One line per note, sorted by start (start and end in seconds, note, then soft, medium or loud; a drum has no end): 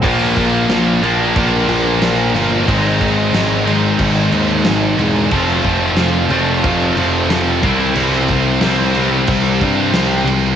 0.02 0.34 A#1 medium
0.02 0.34 A#2 medium
0.02 0.36 F3 loud
0.02 0.36 A#3 medium
0.02 2.65 D4 medium
0.02 1.00 D4 medium
0.02 2.65 A#4 medium
0.02 2.64 F5 medium
0.02 2.66 A#5 medium
0.02 kick loud
0.02 crash loud
0.02 crash medium
0.35 0.67 A#1 medium
0.35 0.67 A#2 medium
0.35 0.68 F3 medium
0.35 0.68 A#3 medium
0.35 kick medium
0.35 crash medium
0.68 0.99 A#1 medium
0.68 1.01 A#2 medium
0.68 1.02 F3 loud
0.68 1.03 A#3 medium
0.68 snare loud
0.68 crash medium
1.02 1.33 A#1 loud
1.02 1.35 A#2 medium
1.02 1.35 F3 medium
1.02 1.36 A#3 medium
1.02 2.65 D4 medium
1.02 crash medium
1.36 1.66 A#1 medium
1.36 1.68 A#2 loud
1.36 1.68 F3 loud
1.36 1.69 A#3 loud
1.36 kick loud
1.36 crash medium
1.68 1.99 A#1 loud
1.68 2.00 A#2 medium
1.68 2.01 F3 medium
1.68 2.01 A#3 loud
1.68 crash medium
2.01 2.32 A#1 loud
2.01 2.34 A#2 medium
2.01 2.34 F3 medium
2.01 2.34 A#3 loud
2.01 snare loud
2.01 crash medium
2.34 2.65 G1 medium
2.34 2.66 A#2 medium
2.34 2.66 F3 medium
2.34 2.66 A#3 medium
2.34 crash medium
2.68 3.30 G#1 loud
2.68 3.00 G#2 medium
2.68 3.00 D#3 medium
2.68 3.01 G#3 loud
2.68 3.66 C4 loud
2.68 5.30 D#4 medium
2.68 3.64 D#4 loud
2.68 7.59 C5 medium
2.68 5.30 G#5 medium
2.68 7.60 C6 medium
2.68 kick loud
2.68 crash medium
3.01 3.32 G#2 medium
3.01 3.33 D#3 medium
3.01 3.34 G#3 medium
3.01 kick medium
3.01 crash medium
3.33 3.96 G#1 medium
3.33 3.66 G#2 medium
3.33 3.67 D#3 loud
3.33 3.68 G#3 loud
3.33 snare loud
3.33 crash medium
3.65 3.99 G#2 medium
3.65 3.99 D#3 loud
3.65 4.00 G#3 medium
3.65 5.33 C4 medium
3.65 5.29 D#4 medium
3.65 crash medium
3.99 4.30 G#1 medium
3.99 4.31 G#2 loud
3.99 4.33 D#3 loud
3.99 4.33 G#3 loud
3.99 kick loud
3.99 crash medium
4.32 4.63 D#2 loud
4.32 4.65 G#2 medium
4.32 4.66 D#3 medium
4.32 4.66 G#3 loud
4.32 crash medium
4.65 4.96 G#1 medium
4.65 4.97 G#2 medium
4.65 4.98 D#3 medium
4.65 4.99 G#3 medium
4.65 snare loud
4.65 crash medium
4.98 5.29 E1 medium
4.98 5.30 G#2 medium
4.98 5.30 D#3 medium
4.98 5.30 G#3 medium
4.98 crash medium
5.31 5.62 F1 loud
5.31 5.64 F2 medium
5.31 5.64 C3 loud
5.31 5.65 F3 loud
5.31 6.30 A3 medium
5.31 6.31 C4 loud
5.31 7.62 F4 medium
5.31 6.29 F4 loud
5.31 7.62 A5 medium
5.31 kick loud
5.31 crash medium
5.48 snare soft
5.64 5.95 F1 medium
5.64 5.97 F2 medium
5.64 5.98 C3 medium
5.64 5.99 F3 medium
5.64 kick medium
5.64 crash medium
5.96 6.28 F1 medium
5.96 6.30 F2 medium
5.96 6.31 C3 loud
5.96 6.32 F3 loud
5.96 snare loud
5.96 crash medium
6.30 6.61 F1 loud
6.30 6.65 F2 medium
6.30 6.65 C3 medium
6.30 6.65 F3 medium
6.30 7.62 A3 medium
6.30 7.62 C4 medium
6.30 7.61 F4 medium
6.30 crash medium
6.64 6.94 F1 medium
6.64 6.96 F2 loud
6.64 6.97 C3 loud
6.64 6.96 F3 loud
6.64 kick loud
6.64 crash medium
6.97 7.27 F1 loud
6.97 7.29 F2 medium
6.97 7.29 C3 medium
6.97 7.30 F3 medium
6.97 crash medium
7.29 7.60 F1 medium
7.29 7.61 F2 medium
7.29 7.61 C3 medium
7.29 7.62 F3 loud
7.29 snare loud
7.29 crash medium
7.63 7.94 C2 medium
7.63 7.95 C3 loud
7.63 7.95 G3 loud
7.63 7.96 C4 loud
7.63 10.56 E4 medium
7.63 8.62 E4 loud
7.63 10.56 C5 medium
7.63 10.56 G5 medium
7.63 10.56 C6 medium
7.63 kick loud
7.63 crash medium
7.96 8.58 C2 loud
7.96 8.28 C3 medium
7.96 8.29 G3 loud
7.96 8.29 C4 loud
7.96 crash medium
8.12 snare soft
8.28 8.62 C3 medium
8.28 8.62 G3 medium
8.28 8.62 C4 loud
8.28 kick medium
8.28 crash medium
8.61 9.24 C2 medium
8.61 8.95 C3 medium
8.61 8.96 G3 medium
8.61 8.96 C4 loud
8.61 snare loud
8.61 crash medium
8.67 10.27 E4 medium
8.95 9.27 C3 medium
8.95 9.28 G3 medium
8.95 9.28 C4 medium
8.95 crash medium
9.27 9.58 C2 medium
9.27 9.61 C3 loud
9.27 9.61 G3 loud
9.27 9.62 C4 loud
9.27 kick loud
9.27 crash medium
9.61 9.91 G2 loud
9.61 9.92 C3 medium
9.61 9.93 G3 medium
9.61 9.93 C4 medium
9.61 kick medium
9.61 crash medium
9.92 10.24 C2 medium
9.92 10.26 C3 medium
9.92 10.26 G3 medium
9.92 10.27 C4 loud
9.92 snare loud
9.92 crash medium
10.24 10.56 C2 medium
10.24 10.56 C3 medium
10.24 10.56 G3 medium
10.24 10.56 C4 medium
10.24 crash medium